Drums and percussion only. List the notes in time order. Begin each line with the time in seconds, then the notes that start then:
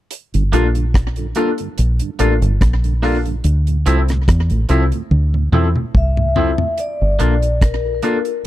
0.11 closed hi-hat
0.34 closed hi-hat
0.53 closed hi-hat
0.75 closed hi-hat
0.94 kick, cross-stick, closed hi-hat
1.16 closed hi-hat
1.35 closed hi-hat
1.58 closed hi-hat
1.78 closed hi-hat
1.99 closed hi-hat
2.19 closed hi-hat
2.42 closed hi-hat
2.61 kick, cross-stick, closed hi-hat
2.84 closed hi-hat
3.03 cross-stick, open hi-hat
3.26 closed hi-hat
3.44 closed hi-hat
3.67 closed hi-hat
3.86 closed hi-hat
4.08 cross-stick, closed hi-hat
4.28 kick, cross-stick, closed hi-hat
4.50 closed hi-hat
4.69 closed hi-hat
4.92 closed hi-hat
5.11 high tom
5.34 high tom
5.53 mid tom
5.76 mid tom
5.95 kick, mid tom
6.17 mid tom
6.36 floor tom
6.58 floor tom
6.78 closed hi-hat
7.20 closed hi-hat
7.42 closed hi-hat
7.61 kick, cross-stick, closed hi-hat
8.02 closed hi-hat
8.25 closed hi-hat